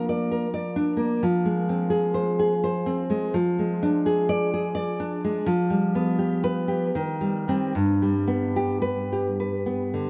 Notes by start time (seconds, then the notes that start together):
Already playing: F3 A#3 D4
0.09 D5
0.31 A#4
0.54 D5
0.76 D4
0.97 A#3
1.23 F3
1.45 G#3
1.69 C4
1.90 G#4
2.14 C5
2.39 G#4
2.64 C5
2.86 C4
3.10 G#3
3.34 F3
3.59 G#3
3.83 D4
4.06 G#4
4.29 D5
4.54 G#4
4.75 D5
5.00 D4
5.24 G#3
5.46 F3
5.70 G3
5.95 B3
6.19 G4
6.44 B4
6.68 G4
6.95 D#3
7.21 G3
7.48 G3 C4
7.75 G2
8.02 G3
8.28 B3
8.56 G4
8.82 B4
9.12 G4
9.40 B4
9.66 B3
9.94 D3